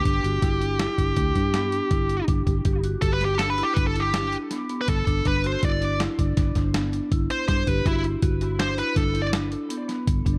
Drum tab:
HH |xxxxxxxxxxxxxx|xxxxxxxxxxxxxx|xxxxxxxxxxxxxx|xxxxxxxxxxxxxx|
SD |--o-o---o-----|---oo---o-o-o-|----o-ooo---o-|----o-o-o--o--|
BD |o-o--ooo--o-oo|o-o---o-----oo|o-o--ooo--o-oo|o-o---o-----oo|